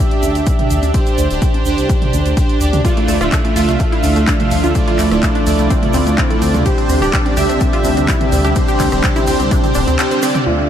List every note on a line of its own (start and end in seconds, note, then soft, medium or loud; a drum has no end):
0.00 0.92 D4 medium
0.00 0.92 G4 medium
0.00 0.92 E5 loud
0.11 closed hi-hat soft
0.23 0.32 D2 medium
0.23 closed hi-hat medium
0.23 high conga medium
0.23 shaker medium
0.35 0.43 D2 medium
0.35 closed hi-hat soft
0.35 shaker soft
0.46 kick loud
0.46 closed hi-hat medium
0.46 shaker medium
0.59 closed hi-hat soft
0.59 mid tom medium
0.70 0.79 D2 medium
0.70 closed hi-hat medium
0.70 shaker medium
0.83 0.91 D2 medium
0.83 closed hi-hat soft
0.83 high conga medium
0.83 shaker soft
0.94 1.27 D4 medium
0.94 1.28 G4 medium
0.94 1.27 C5 loud
0.94 kick loud
0.94 closed hi-hat medium
0.94 shaker medium
1.06 closed hi-hat soft
1.06 shaker soft
1.18 1.27 D2 medium
1.18 closed hi-hat medium
1.18 shaker medium
1.30 1.38 D1 medium
1.30 1.63 D4 medium
1.30 1.63 G4 medium
1.30 1.63 C5 medium
1.30 closed hi-hat soft
1.30 shaker soft
1.42 kick loud
1.42 closed hi-hat medium
1.42 shaker medium
1.54 closed hi-hat soft
1.54 high conga medium
1.65 1.74 D2 medium
1.65 2.35 D4 medium
1.65 2.35 G4 medium
1.65 2.35 C5 medium
1.65 shaker medium
1.78 1.86 C2 medium
1.78 closed hi-hat soft
1.78 shaker soft
1.89 kick loud
1.89 closed hi-hat medium
1.89 shaker soft
2.02 closed hi-hat soft
2.02 mid tom medium
2.13 2.22 D2 medium
2.13 closed hi-hat medium
2.13 high conga medium
2.13 shaker medium
2.26 2.34 D2 medium
2.26 closed hi-hat soft
2.26 shaker soft
2.37 2.58 D4 medium
2.37 2.58 G4 medium
2.37 2.58 C5 medium
2.37 kick loud
2.37 closed hi-hat medium
2.37 shaker medium
2.49 closed hi-hat soft
2.61 2.70 D2 medium
2.61 2.82 D4 medium
2.61 2.82 G4 medium
2.61 2.82 D5 medium
2.61 closed hi-hat medium
2.61 shaker medium
2.73 2.81 D2 medium
2.73 closed hi-hat soft
2.73 mid tom medium
2.73 high conga medium
2.73 shaker soft
2.85 10.43 D3 medium
2.85 6.62 F3 medium
2.85 3.18 A3 medium
2.85 6.62 A3 medium
2.85 3.18 D4 medium
2.85 3.18 E4 medium
2.85 2.95 F4 loud
2.85 3.18 F4 medium
2.85 3.18 D5 loud
2.85 kick loud
2.85 closed hi-hat medium
2.85 shaker soft
2.97 3.06 A3 medium
2.97 closed hi-hat soft
3.08 3.17 D2 medium
3.08 3.18 A3 medium
3.08 open hi-hat loud
3.08 shaker medium
3.21 3.29 D1 medium
3.21 3.53 A3 medium
3.21 3.53 D4 medium
3.21 3.53 E4 medium
3.21 3.53 F4 medium
3.21 3.30 F4 medium
3.21 3.53 E5 medium
3.21 cross-stick medium
3.21 closed hi-hat soft
3.21 shaker soft
3.32 3.42 A3 medium
3.32 kick loud
3.32 clap loud
3.32 closed hi-hat medium
3.32 shaker medium
3.45 3.54 A3 medium
3.45 closed hi-hat soft
3.45 high conga medium
3.56 3.65 D2 medium
3.56 4.73 A3 medium
3.56 4.72 D4 medium
3.56 3.66 F4 medium
3.56 4.72 F4 medium
3.56 4.72 E5 medium
3.56 4.72 F5 loud
3.56 open hi-hat loud
3.56 shaker medium
3.68 3.77 C2 medium
3.68 3.78 A3 medium
3.68 closed hi-hat soft
3.68 shaker soft
3.80 3.90 A3 medium
3.80 kick loud
3.80 closed hi-hat medium
3.80 shaker soft
3.92 4.01 E4 medium
3.92 closed hi-hat soft
4.03 4.13 D2 medium
4.03 4.14 A3 medium
4.03 open hi-hat loud
4.03 high conga medium
4.03 shaker medium
4.16 4.24 D2 medium
4.16 4.25 A3 medium
4.16 closed hi-hat soft
4.16 shaker soft
4.27 4.37 D4 medium
4.27 kick loud
4.27 clap loud
4.27 closed hi-hat medium
4.27 shaker medium
4.40 4.49 A3 medium
4.40 closed hi-hat soft
4.40 mid tom medium
4.51 4.60 D2 medium
4.51 4.61 A3 medium
4.51 open hi-hat loud
4.51 shaker medium
4.64 4.72 D2 medium
4.64 4.73 F4 medium
4.64 closed hi-hat soft
4.64 high conga medium
4.64 shaker soft
4.75 5.08 A3 medium
4.75 4.85 A3 medium
4.75 5.08 D4 medium
4.75 5.08 E4 medium
4.75 5.08 F4 medium
4.75 5.08 D5 medium
4.75 kick loud
4.75 closed hi-hat medium
4.75 shaker soft
4.88 4.97 F4 medium
4.88 closed hi-hat soft
4.99 5.08 D2 medium
4.99 5.09 A3 medium
4.99 clap medium
4.99 open hi-hat loud
4.99 shaker medium
5.11 5.19 D1 medium
5.11 5.44 A3 medium
5.11 5.20 A3 medium
5.11 5.44 D4 medium
5.11 5.44 E4 medium
5.11 5.44 F4 medium
5.11 5.44 D5 medium
5.11 cross-stick medium
5.11 closed hi-hat soft
5.11 shaker soft
5.23 5.33 A3 medium
5.23 kick loud
5.23 clap loud
5.23 closed hi-hat medium
5.23 shaker medium
5.35 5.44 D4 medium
5.35 closed hi-hat soft
5.35 high conga medium
5.47 5.55 D2 medium
5.47 6.63 A3 medium
5.47 5.57 A3 medium
5.47 6.63 D4 medium
5.47 6.63 E4 medium
5.47 6.63 F4 medium
5.47 6.63 D5 medium
5.47 open hi-hat loud
5.47 shaker medium
5.59 5.67 C2 medium
5.59 5.68 A3 medium
5.59 closed hi-hat soft
5.59 shaker soft
5.70 5.80 C4 medium
5.70 kick loud
5.70 closed hi-hat medium
5.70 shaker soft
5.83 5.92 A3 medium
5.83 closed hi-hat soft
5.83 mid tom medium
5.93 6.03 D2 medium
5.93 6.04 C4 medium
5.93 open hi-hat loud
5.93 high conga medium
5.93 shaker medium
6.07 6.15 D2 medium
6.07 6.16 A3 medium
6.07 closed hi-hat soft
6.07 shaker soft
6.18 6.28 C4 medium
6.18 kick loud
6.18 clap loud
6.18 closed hi-hat medium
6.18 shaker medium
6.30 6.39 A3 medium
6.30 closed hi-hat soft
6.42 6.51 D2 medium
6.42 6.52 C4 medium
6.42 open hi-hat loud
6.42 shaker medium
6.54 6.62 D2 medium
6.54 6.63 A3 medium
6.54 closed hi-hat soft
6.54 mid tom medium
6.54 high conga medium
6.54 shaker soft
6.66 10.43 C3 medium
6.66 10.43 G3 medium
6.66 6.99 D4 medium
6.66 8.54 D4 medium
6.66 6.76 G4 loud
6.66 6.99 G4 medium
6.66 10.43 G4 medium
6.66 6.99 C5 loud
6.66 kick loud
6.66 closed hi-hat loud
6.66 shaker soft
6.78 6.87 C4 medium
6.78 closed hi-hat soft
6.89 6.98 D2 medium
6.89 6.99 C4 medium
6.89 open hi-hat medium
6.89 shaker medium
7.02 7.10 D1 medium
7.02 7.34 D4 medium
7.02 7.11 G4 medium
7.02 7.34 G4 medium
7.02 7.34 D5 medium
7.02 cross-stick medium
7.02 closed hi-hat soft
7.02 shaker soft
7.13 7.23 C4 medium
7.13 kick loud
7.13 clap loud
7.13 closed hi-hat medium
7.13 shaker soft
7.26 7.35 C4 medium
7.26 closed hi-hat soft
7.26 high conga medium
7.37 7.46 D2 medium
7.37 8.53 D4 medium
7.37 7.47 G4 medium
7.37 8.53 G4 medium
7.37 8.53 E5 loud
7.37 open hi-hat medium
7.37 shaker medium
7.49 7.58 C2 medium
7.49 7.59 C4 medium
7.49 closed hi-hat soft
7.49 shaker soft
7.61 7.71 C4 medium
7.61 kick loud
7.61 closed hi-hat medium
7.61 shaker medium
7.73 7.82 F4 medium
7.73 closed hi-hat soft
7.84 7.93 D2 medium
7.84 7.95 C4 medium
7.84 open hi-hat loud
7.84 high conga medium
7.84 shaker medium
7.97 8.05 D2 medium
7.97 8.06 C4 medium
7.97 closed hi-hat soft
7.97 shaker soft
8.08 8.18 E4 loud
8.08 kick loud
8.08 clap loud
8.08 closed hi-hat medium
8.08 shaker soft
8.21 8.30 C4 medium
8.21 closed hi-hat soft
8.21 mid tom medium
8.32 8.41 D2 loud
8.32 8.42 C4 medium
8.32 open hi-hat loud
8.32 shaker medium
8.45 8.53 D2 medium
8.45 8.54 G4 medium
8.45 closed hi-hat soft
8.45 high conga medium
8.45 shaker soft
8.56 8.66 C4 medium
8.56 10.45 C4 medium
8.56 8.89 D4 medium
8.56 8.89 G4 medium
8.56 8.89 C5 loud
8.56 kick loud
8.56 closed hi-hat loud
8.56 shaker soft
8.68 8.78 G4 medium
8.68 closed hi-hat soft
8.68 shaker soft
8.80 8.89 D2 medium
8.80 8.90 C4 medium
8.80 kick medium
8.80 clap medium
8.80 open hi-hat loud
8.80 shaker medium
8.92 9.00 D1 medium
8.92 9.01 C4 medium
8.92 9.25 D4 medium
8.92 9.25 G4 medium
8.92 9.25 C5 medium
8.92 cross-stick medium
8.92 closed hi-hat soft
8.92 shaker soft
9.03 9.14 C4 medium
9.03 kick loud
9.03 clap loud
9.03 closed hi-hat medium
9.03 shaker soft
9.16 9.25 E4 medium
9.16 closed hi-hat soft
9.16 high conga medium
9.16 shaker soft
9.27 9.36 D2 medium
9.27 9.37 C4 medium
9.27 9.97 D4 medium
9.27 9.97 G4 medium
9.27 9.97 C5 medium
9.27 open hi-hat loud
9.27 shaker medium
9.40 9.48 C2 medium
9.40 9.49 C4 medium
9.40 closed hi-hat soft
9.40 shaker soft
9.51 9.61 D4 medium
9.51 kick loud
9.51 closed hi-hat medium
9.51 shaker medium
9.64 9.73 C4 medium
9.64 closed hi-hat soft
9.64 mid tom medium
9.64 shaker soft
9.74 9.84 D1 medium
9.74 9.85 D4 medium
9.74 open hi-hat loud
9.74 high conga medium
9.74 shaker medium
9.87 9.96 D2 medium
9.87 9.97 C4 medium
9.87 closed hi-hat soft
9.87 shaker soft
9.99 10.09 C4 medium
9.99 10.20 D4 medium
9.99 10.20 G4 medium
9.99 10.20 C5 medium
9.99 clap loud
9.99 closed hi-hat loud
9.99 shaker medium
10.11 10.20 C4 medium
10.11 closed hi-hat soft
10.11 shaker soft
10.22 10.33 C4 medium
10.22 10.44 D4 medium
10.22 10.44 G4 medium
10.22 10.44 D5 medium
10.22 cross-stick medium
10.22 open hi-hat loud
10.22 shaker loud
10.35 10.44 C4 medium
10.35 closed hi-hat soft
10.35 mid tom medium
10.35 high conga medium
10.35 shaker soft
10.47 10.69 D2 medium
10.47 10.69 D3 medium
10.47 10.69 F3 medium
10.47 10.69 A3 medium
10.47 10.69 D4 medium
10.47 10.56 F4 medium
10.47 10.69 F4 medium
10.47 10.69 D5 medium
10.47 10.69 E5 medium
10.59 10.68 A3 medium